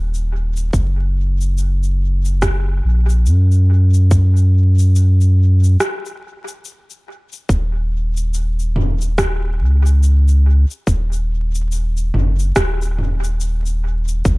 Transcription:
Already playing: sub bass D#1
0.14 shaker
0.57 shaker
0.73 sub bass F#1, kick, shaker
1.41 shaker
1.58 shaker
1.83 shaker
2.25 shaker
2.42 kick, cross-stick, shaker
2.84 sub bass A#1
3.10 shaker
3.26 sub bass F#2, shaker
3.52 shaker
3.94 shaker
4.11 kick, shaker
4.37 shaker
4.79 shaker
4.96 shaker
5.21 shaker
5.64 shaker
5.80 cross-stick, shaker
6.06 shaker
6.48 shaker
6.65 shaker
6.90 shaker
7.33 shaker
7.49 sub bass D#1, kick, shaker
8.17 shaker
8.34 shaker
8.59 shaker
8.76 mid tom
9.01 shaker
9.18 kick, cross-stick, shaker
9.60 sub bass C#2
9.86 shaker
10.03 shaker
10.28 shaker
10.71 shaker
10.87 sub bass D#1, kick, shaker
11.13 shaker
11.55 shaker
11.72 shaker
11.97 shaker
12.14 sub bass F#1, mid tom
12.39 shaker
12.56 sub bass D#1, kick, cross-stick, shaker
12.82 shaker
12.99 mid tom
13.24 shaker
13.40 shaker
13.66 shaker
14.08 shaker
14.25 sub bass F#1, kick, shaker

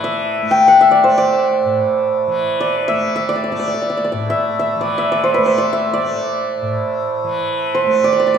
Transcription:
Already playing: tanpura A2 E3 A3, santur C5 D5
0.04 santur E5
0.42 tanpura A3
0.51 santur G5
0.68 santur F#5
0.81 santur E5
0.91 santur D5
1.03 tanpura A3, santur C5
1.18 santur D5
1.65 tanpura A2
2.27 tanpura E3
2.60 santur D5
2.88 tanpura A3, santur E5
3.16 santur E5
3.29 santur D5
3.36 santur D5
3.44 santur D5
3.51 tanpura A3, santur D5
3.60 santur D5
3.67 santur D5
3.74 santur D5
3.82 santur D5
3.90 santur D5
3.97 santur D5
4.05 santur D5
4.12 tanpura A2, santur D5
4.30 santur E5
4.59 santur E5
4.76 tanpura E3
4.81 santur D5
4.98 santur E5
5.12 santur D5
5.24 santur C5
5.34 tanpura A3, santur B4
5.46 santur C5
5.58 santur D5
5.73 santur E5
5.94 santur D5
5.99 tanpura A3
6.62 tanpura A2
7.24 tanpura E3
7.75 santur C5
7.86 tanpura A3
8.04 santur D5
8.13 santur D5
8.20 santur D5
8.27 santur D5
8.34 santur D5

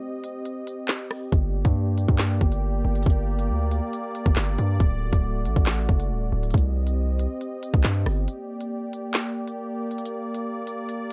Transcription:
Already playing: analog synth pad C4 G4 D#5
0.24 closed hi-hat
0.45 closed hi-hat
0.67 closed hi-hat
0.89 snare, clap, closed hi-hat
1.11 cross-stick, open hi-hat
1.32 808-style bass G1, analog synth pad A#3 D5, kick, closed hi-hat
1.65 808-style bass G2, kick, closed hi-hat
1.98 closed hi-hat
2.08 808-style bass G2, kick
2.19 snare, clap, closed hi-hat
2.41 808-style bass G1, kick
2.52 closed hi-hat
2.85 808-style bass G1
2.95 closed hi-hat
3.03 808-style bass G1, kick, closed hi-hat
3.10 closed hi-hat
3.39 closed hi-hat
3.50 808-style bass D2
3.71 closed hi-hat
3.93 closed hi-hat
4.15 closed hi-hat
4.26 808-style bass G1, kick
4.36 808-style bass G1, snare, clap, closed hi-hat
4.58 808-style bass G2, closed hi-hat
4.80 808-style bass D1, analog synth pad A3 F#4, kick, closed hi-hat
5.13 808-style bass D1, kick, closed hi-hat
5.45 808-style bass A1, closed hi-hat
5.56 808-style bass A1, kick
5.67 snare, clap, closed hi-hat
5.89 808-style bass F#1, kick
6.00 closed hi-hat
6.11 808-style bass D#1
6.32 808-style bass D1
6.43 closed hi-hat
6.51 808-style bass C2, analog synth pad C4 G4 D#5, kick, closed hi-hat
6.58 closed hi-hat
6.87 closed hi-hat
7.19 closed hi-hat
7.41 closed hi-hat
7.63 closed hi-hat
7.74 808-style bass C2, kick
7.84 808-style bass G2, snare, clap, closed hi-hat
8.06 808-style bass G1, cross-stick, open hi-hat
8.28 analog synth pad A#3 D5, closed hi-hat
8.61 closed hi-hat
8.93 closed hi-hat
9.14 snare, clap, closed hi-hat
9.48 closed hi-hat
9.91 closed hi-hat
9.98 closed hi-hat
10.05 closed hi-hat
10.34 closed hi-hat
10.67 closed hi-hat
10.89 closed hi-hat

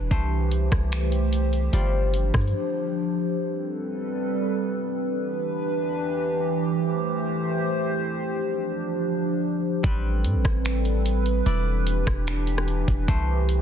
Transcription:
Already playing: 808-style bass E1, kora G3 E4
0.11 808-style bass C2, analog synth pad E3 A3 G4 C5, kora A3 C5, kick, closed hi-hat
0.52 closed hi-hat
0.72 808-style bass C2, kick, cross-stick, closed hi-hat
0.92 finger snap, closed hi-hat
1.12 closed hi-hat
1.33 closed hi-hat
1.53 closed hi-hat
1.73 808-style bass G1, analog synth pad F3 D4, kora G3 F4, closed hi-hat
2.14 closed hi-hat
2.34 808-style bass G2, kick, cross-stick, closed hi-hat
2.41 closed hi-hat
2.47 closed hi-hat
3.35 analog synth pad G3 C4 A4 B4
4.97 analog synth pad E3 D4 G4 B4
6.60 analog synth pad A3 C5
8.22 analog synth pad F3 D4
9.83 808-style bass A1, kora G3 C4 B4, analog synth pad G3 C4 A4 B4, kick, closed hi-hat
10.25 808-style bass A2, closed hi-hat
10.35 808-style bass A1
10.45 808-style bass A1, kick, cross-stick, closed hi-hat
10.65 finger snap, closed hi-hat
10.85 closed hi-hat
11.06 closed hi-hat
11.26 closed hi-hat
11.46 808-style bass E1, analog synth pad E3 D4 G4, kora E4 D5, closed hi-hat
11.87 closed hi-hat
12.07 808-style bass E1, kick, cross-stick, closed hi-hat
12.27 finger snap, closed hi-hat
12.47 closed hi-hat
12.58 cross-stick
12.68 closed hi-hat
12.88 808-style bass E1, kick, closed hi-hat
13.08 808-style bass C2, kora A3 C5, analog synth pad A3 G4 C5, kick, closed hi-hat
13.49 closed hi-hat

